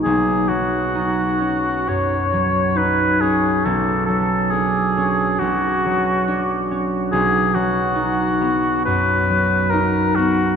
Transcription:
X:1
M:4/4
L:1/8
Q:1/4=68
K:B
V:1 name="Oboe"
G F3 c2 B G | =A A G2 F3 z | G F3 B2 A F |]
V:2 name="Harp"
[B,,,DF] F, D C F,, F, D C | B,,, F, =D C B,,, F, D C | B,,, F, D B, F,, F, D B, |]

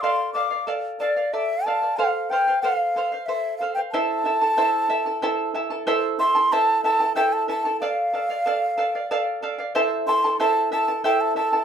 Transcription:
X:1
M:6/8
L:1/16
Q:3/8=62
K:Am
V:1 name="Quena"
c'2 d'2 z2 d2 e2 a2 | f2 g2 f4 e2 f g | a8- a2 z2 | z2 c'2 a2 a2 g a a2 |
f8- f2 z2 | z2 c'2 a2 a2 g a a2 |]
V:2 name="Charango"
[Adf]2 [Adf] [df] [Adf]2 [Adf] [df] [Ad]2 [Adf] [df] | [Acf]2 [Acf] [cf] [Acf]2 [Acf] [cf] [Ac]2 [Acf] [cf] | [EAcea]2 [EAea] [EAa] [EAcea]2 [EAea] [EAa] [EAcea]2 [EAea] [EAa] | [EAcea]2 [EAea] [EAa] [EAcea]2 [EAea] [EAa] [EAcea]2 [EAea] [EAa] |
[Adf]2 [Adf] [df] [Adf]2 [Adf] [df] [Adf]2 [Adf] [df] | [EAcea]2 [EAea] [EAa] [EAcea]2 [EAea] [EAa] [EAcea]2 [EAea] [EAa] |]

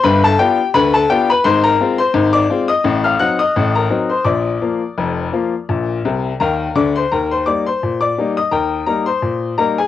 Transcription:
X:1
M:2/4
L:1/16
Q:"Swing 16ths" 1/4=85
K:Gm
V:1 name="Upright piano"
[=B=b] [Aa] [Gg]2 [Bb] [Aa] [Gg] [Bb] | [K:Eb] [cc'] [Bb]2 [cc']2 [dd']2 [ee']- | [ee'] [ff'] [^f^f'] [ee']2 [Bb]2 [cc'] | [dd']8- |
[dd']4 [Bfb]2 [dd'] [cc'] | [Bb] [cc'] [dd'] [cc']2 [dd']2 [ee'] | [Bgb]2 [Bb] [cc']3 [Bb] [Aa] |]
V:2 name="Upright piano" clef=bass
[G,,,G,,]2 [=B,DF]2 [D,,D,]2 [B,DF]2 | [K:Eb] [A,,,A,,]2 [A,CF]2 [A,,,A,,]2 [A,CF]2 | [=A,,,=A,,]2 [^F,CE]2 [A,,,A,,]2 [F,CE]2 | [B,,,B,,]2 [F,B,F]2 [F,,,F,,]2 [F,B,F]2 |
[B,,,B,,]2 [C,,C,]2 [E,,E,]2 [D,,D,]2 | E,,2 [G,B,E]2 B,,2 [G,B,E]2 | E,,2 [G,B,E]2 B,,2 [G,B,E]2 |]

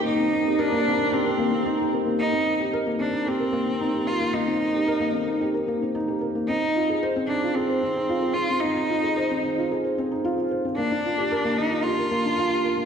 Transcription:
X:1
M:4/4
L:1/16
Q:1/4=112
K:Eb
V:1 name="Cello"
E4 D4 C6 z2 | E4 z2 D2 C6 F2 | E8 z8 | E4 z2 D2 C6 F2 |
E8 z8 | D6 E2 F8 |]
V:2 name="Felt piano"
B, C E G B B, C E G B B, C E G B B, | B, C E G B B, C E G B B, C E G B B, | B, C E G B B, C E G B B, C E G B B, | C E F A c C E F A c C E F A c C |
C E F A c C E F A c C E F A c C | B, D F G B B, D F G B B, D F G B B, |]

